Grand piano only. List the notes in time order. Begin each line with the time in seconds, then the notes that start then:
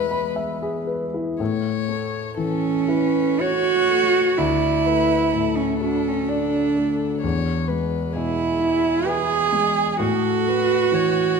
Already playing: E2 B2 G#3 E4 G#4 B4 E5
0.11 B5
0.36 E5
0.62 G#4
0.87 B4
1.14 E4
1.40 A2
1.88 A3
2.37 E3
2.88 E4
3.41 C#5
3.90 A3
4.38 D2
4.87 A3
5.34 A2
5.81 F#4
6.29 D5
6.76 A3
7.24 E2
7.70 G#3
8.15 B2
8.61 E4
9.06 B4
9.53 G#3
9.99 A2
10.46 A3
10.92 E3